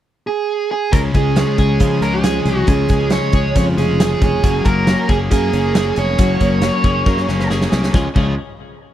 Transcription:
0.27 G#4
0.71 G#4
0.92 C#2 C#3 F3 G#3 C#4 G#4 A#4, kick, closed hi-hat
1.14 C#2 G#3 C#4 G#4, kick, closed hi-hat
1.36 F3 G#3 C#4 G#4, snare, closed hi-hat
1.58 C#2 G#3 C#4 G#4, kick, snare, closed hi-hat
1.80 C#3 F3 G#3 C#4 G#4, kick, closed hi-hat
2.01 C#2 C#4 G#4 A#4, closed hi-hat
2.05 G#3
2.14 G#4
2.24 F3 G#3 C#4 G#4, snare, closed hi-hat
2.45 C2 C#4 G#4, closed hi-hat
2.50 G#3
2.67 C#2 C#3 F3 G#3 C#4 G#4, kick, closed hi-hat
2.89 C#2 C#4 G#4, kick, closed hi-hat
2.93 G#3
3.10 F3 G#3 C#4 C#5, snare, closed hi-hat
3.15 G#4
3.32 C#2 C#4 G#4, kick, closed hi-hat
3.37 G#3
3.55 F2 C#3 F3 G#3 C#4 G#4 C#5, kick, closed hi-hat
3.77 F1 C#4 G#4, closed hi-hat
3.81 G#3
4.00 F3 G#3 C#4 G#4, snare, closed hi-hat
4.21 F1 G#3 C#4 G#4, kick, closed hi-hat
4.44 F#1 F#3 A#3 C#4 G#4, kick, closed hi-hat
4.65 F#1 A#3 C#4 G#4 A#4, kick, closed hi-hat
4.86 F#3 A#3 C#4 G#4, snare, closed hi-hat
5.08 F#1 A#3 C#4 G#4, kick, snare, closed hi-hat
5.31 F#2 F#3 A#3 C#4 G#4, kick, closed hi-hat
5.53 F#1 A#3 C#4 G#4, closed hi-hat
5.74 F#3 A#3 C#4 G#4, snare, closed hi-hat
5.96 F1 C#4 G#4 C#5, closed hi-hat
6.00 A#3
6.18 F#1 F#3 A#3 C#4 G#4, kick, closed hi-hat
6.39 F#1 C#4 G#4, kick, closed hi-hat
6.43 A#3
6.61 F#3 A#3 C#4 G#4, snare, closed hi-hat
6.83 F#1 A#3 C#4 G#4, kick, closed hi-hat
7.06 F#2 F#3 A#3 C#4 G#4, kick, snare
7.17 snare
7.27 F#1 A#3 C#4 G#4, snare
7.40 snare
7.49 F#3 A#3 C#4 G#4, snare
7.61 snare
7.71 C2 A#3 C#4 G#4, snare
7.83 snare
7.92 C#2 C#3 F3 G#3 C#4 F4 G#4, kick, snare
8.14 C#2 C#3 F3 G#3 C#4 F4 G#4, kick, crash

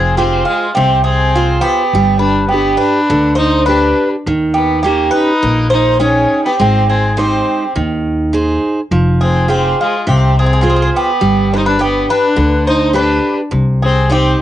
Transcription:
Already playing: F1 F3 C4 G#4
0.17 C4 F4 G4 G#4 C5
0.45 G#3 F4
0.74 C2 C3 C4 G4
1.04 C4 G#4
1.35 F4 G#4 C5
1.61 B3 G4
1.93 G1 G3
2.19 D4 B4
2.48 B3 D4 G4
2.53 G4 B4
2.77 D4 B4
3.10 D2 D3
3.35 D#4 C5
3.66 D4 G4 B4
4.26 D#2 D#3
4.54 B3 G4
4.83 A#3 C#4 D#4 G4
5.11 D#4 B4
5.42 A#1 A#3
5.70 D#4 C5
6.00 C#4 D#4 G#4 G5
6.45 B3 G4
6.58 G#1 G#3 C4 G4
6.88 C4 G#4
7.17 G#3 C4 D#4 G4 C5
7.76 D#2 D#3
8.33 D#4 G#4 C5
8.91 F1 F3
9.21 C4 G#4
9.48 C4 F4 G4 G#4 C5
9.81 G#3 F4
10.07 C2 C3 C4 G4
10.38 C4 G#4
10.46 G#4
10.53 G#4
10.61 F4 G#4 C5
10.70 G#4
10.76 G#4
10.82 G#4
10.95 B3 G4
11.21 G1 G3
11.53 D4 D#4 B4 C5
11.66 D4 B4
11.79 B3 D4 G4 B4
12.10 D4 B4
12.36 D2 D3
12.67 D#4 C5
12.93 D4 G4 B4
13.51 C2 C3
13.83 C4 G#4
14.10 C4 D#4 G4

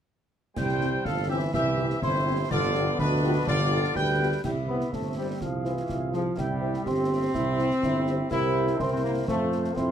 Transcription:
0.56 C2 E3 G3 C4 C5 G5 G6, concert bass drum, snare, crash
0.69 snare
0.80 C4 E4 G4, snare
1.04 G1 F3 A4 F5 F6, concert bass drum, snare
1.29 E3 C4 E4 G4 E5 E6
1.53 C2 E3 G4 E5 E6, concert bass drum, snare
1.77 C4 E4 G4
1.90 snare
2.01 G1 C3 E4 C5 C6, concert bass drum, snare
2.26 C4 E4 G4
2.50 G1 D3 F3 B3 F4 D5 D6, concert bass drum, snare, crash
2.63 snare
2.75 B3 F4 G4, snare
2.98 D2 B2 D4 B4 B5, concert bass drum, snare
3.23 B3 F4 G4
3.47 G1 D3 F4 D5 D6, concert bass drum, snare
3.71 B3 F4 G4
3.84 snare
3.95 D2 G3 B4 G5 G6, concert bass drum, snare
4.20 B3 F4 G4
4.44 C2 G3 E4 G4 E5 G5, concert bass drum, snare, crash
4.68 B3 G4 C5 E5 B5
4.81 snare
4.92 G1 A3 C4 A5, concert bass drum, snare
5.16 G3 G4 C5 E5 G5
5.41 C2 F3 F4 G#4 F5, concert bass drum, snare
5.64 E3 G#4 C5 E5 F5, snare
5.77 snare
5.89 C2, concert bass drum, snare
6.12 F3 G#4 C5 F5, snare
6.36 C2 G3 E4 G4 E5 G5, concert bass drum, snare
6.61 G4 C5 E5
6.74 snare
6.85 G1 C4 G4 C6, concert bass drum, snare
7.10 G4 C5 E5
7.34 C2 E4, concert bass drum, snare
7.58 G4 C5 E5, snare
7.71 snare
7.82 G1 E4, concert bass drum, snare
8.06 G4 C5 E5, snare
8.30 C2 E4 G4 A#4 C5 G5 E6, concert bass drum, snare, crash
8.67 snare
8.78 C2 C4 E4 A#4 C5 G5 C6, concert bass drum, snare
8.92 C4 C6
9.03 A#3 A#5
9.27 F2 A3 F4 A4 C5 F5 A5, concert bass drum, snare
9.52 snare
9.64 snare
9.76 F2 C4 E4 A4 C5 F5 C6, concert bass drum, snare

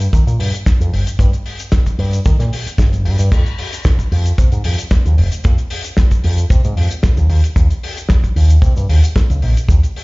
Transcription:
0.00 closed hi-hat, shaker
0.13 D#3, kick, closed hi-hat, shaker
0.27 A#2, closed hi-hat, shaker
0.39 G2, open hi-hat
0.54 closed hi-hat, shaker
0.66 kick, snare, closed hi-hat, shaker
0.80 F2, closed hi-hat, shaker
0.92 G1, open hi-hat
1.07 closed hi-hat, shaker
1.19 G2, kick, closed hi-hat, shaker
1.33 closed hi-hat, shaker
1.46 open hi-hat
1.59 closed hi-hat, shaker
1.72 kick, snare, closed hi-hat, shaker
1.86 kick, closed hi-hat, shaker
1.99 G2, open hi-hat
2.13 closed hi-hat, shaker
2.25 D#3, kick, closed hi-hat, shaker
2.39 A#2, snare, closed hi-hat, shaker
2.53 open hi-hat
2.66 muted picked electric bass stroke, closed hi-hat, shaker
2.78 G1, kick, snare, closed hi-hat, shaker
2.93 closed hi-hat, shaker
3.05 G2, open hi-hat
3.19 G2, closed hi-hat, shaker
3.32 F2, kick, closed hi-hat, crash, shaker
3.46 closed hi-hat, shaker
3.59 open hi-hat
3.73 closed hi-hat, shaker
3.84 kick, snare, closed hi-hat, shaker
3.99 kick, closed hi-hat, shaker
4.12 F2, open hi-hat
4.26 closed hi-hat, shaker
4.38 C3, kick, closed hi-hat, shaker
4.52 G#2, closed hi-hat, shaker
4.64 F2, open hi-hat
4.78 closed hi-hat, shaker
4.91 kick, snare, closed hi-hat, shaker
5.06 D#2, closed hi-hat, shaker
5.17 F1, open hi-hat
5.32 closed hi-hat, shaker
5.44 F2, kick, closed hi-hat, shaker
5.58 closed hi-hat, shaker
5.70 open hi-hat
5.84 closed hi-hat, shaker
5.97 kick, snare, closed hi-hat, shaker
6.11 kick, closed hi-hat, shaker
6.24 F2, open hi-hat
6.38 closed hi-hat, shaker
6.50 C3, kick, closed hi-hat, shaker
6.64 G#2, closed hi-hat, shaker
6.77 F2, open hi-hat
6.91 closed hi-hat, shaker
7.03 kick, snare, closed hi-hat, shaker
7.17 D#2, closed hi-hat, shaker
7.29 D#2, open hi-hat
7.44 closed hi-hat, shaker
7.56 D#2, kick, closed hi-hat, shaker
7.70 closed hi-hat, shaker
7.83 open hi-hat
7.97 closed hi-hat, shaker
8.09 kick, snare, closed hi-hat, shaker
8.24 kick, closed hi-hat, shaker
8.36 D#2, open hi-hat
8.50 closed hi-hat, shaker
8.62 C3, kick, closed hi-hat, shaker
8.76 G2, closed hi-hat, shaker
8.89 D#2, open hi-hat
9.04 closed hi-hat, shaker
9.16 kick, snare, closed hi-hat, shaker
9.30 C#2, closed hi-hat, shaker
9.42 A#1, open hi-hat
9.57 closed hi-hat, shaker
9.69 D#2, kick, closed hi-hat, shaker
9.83 closed hi-hat, shaker
9.96 open hi-hat

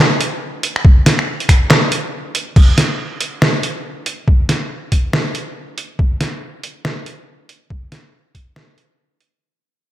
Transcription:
0.21 closed hi-hat
0.63 closed hi-hat
0.76 finger snap
0.85 kick
1.06 snare, closed hi-hat
1.19 finger snap
1.40 closed hi-hat
1.49 finger snap, kick, closed hi-hat
1.71 snare, clap
1.92 closed hi-hat
2.35 closed hi-hat
2.56 kick, crash
2.78 snare, closed hi-hat
3.21 closed hi-hat
3.42 snare
3.63 closed hi-hat
4.06 closed hi-hat
4.28 kick
4.49 snare, closed hi-hat
4.92 kick, closed hi-hat
5.13 snare
5.35 closed hi-hat
5.78 closed hi-hat
5.99 kick
6.21 snare, closed hi-hat
6.63 closed hi-hat
6.85 snare
7.06 closed hi-hat
7.49 closed hi-hat
7.70 kick
7.92 snare, closed hi-hat
8.35 kick, closed hi-hat
8.56 snare
8.78 closed hi-hat
9.21 closed hi-hat

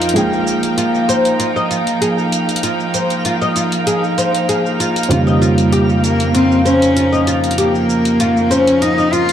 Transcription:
Already playing: F2 D#3 F3 A#3 C#4 D#4 F4 G4 F5 G5
0.02 closed hi-hat, shaker
0.09 closed hi-hat
0.14 F3 G#3 A#3 D#4 G#4, closed hi-hat, shaker
0.18 G5
0.33 shaker
0.47 shaker
0.63 closed hi-hat, shaker
0.78 F4, closed hi-hat, shaker
0.95 shaker
1.09 C5, closed hi-hat, shaker
1.25 closed hi-hat, shaker
1.40 F4, closed hi-hat, shaker
1.56 D#5, shaker
1.71 F4, closed hi-hat, shaker
1.87 closed hi-hat, shaker
2.01 G#4, closed hi-hat, shaker
2.19 shaker
2.32 closed hi-hat, shaker
2.49 closed hi-hat, shaker
2.56 closed hi-hat
2.63 F4, closed hi-hat, shaker
2.80 shaker
2.94 C5, closed hi-hat, shaker
3.10 closed hi-hat, shaker
3.25 F4, closed hi-hat, shaker
3.42 D#5, shaker
3.56 F4, closed hi-hat, shaker
3.72 closed hi-hat, shaker
3.87 G#4, closed hi-hat, shaker
4.04 shaker
4.18 C5, closed hi-hat, shaker
4.35 closed hi-hat, shaker
4.49 G#4, closed hi-hat, shaker
4.66 shaker
4.80 F4, closed hi-hat, shaker
4.96 closed hi-hat, shaker
5.03 closed hi-hat
5.09 F2 C#3 D#3 G3 A#3 F4, closed hi-hat, shaker
5.13 G4
5.27 D#5, shaker
5.42 F4, shaker
5.58 closed hi-hat, shaker
5.72 G4, closed hi-hat, shaker
5.90 shaker
6.04 A#3, closed hi-hat, shaker
6.20 closed hi-hat, shaker
6.34 C4 F4, closed hi-hat, shaker
6.52 shaker
6.65 C#4 C5, closed hi-hat, shaker
6.82 closed hi-hat, shaker
6.96 F4, closed hi-hat, shaker
7.13 D#5, shaker
7.27 F4, closed hi-hat, shaker
7.44 closed hi-hat, shaker
7.51 closed hi-hat
7.58 A#3 G4, closed hi-hat, shaker
7.75 shaker
7.90 shaker
8.05 closed hi-hat, shaker
8.20 F4, closed hi-hat, shaker
8.37 shaker
8.51 C#4 C5, closed hi-hat, shaker
8.67 closed hi-hat, shaker
8.82 D#4 F4, closed hi-hat, shaker
8.98 D#5, shaker
9.12 F4, closed hi-hat, shaker
9.29 closed hi-hat

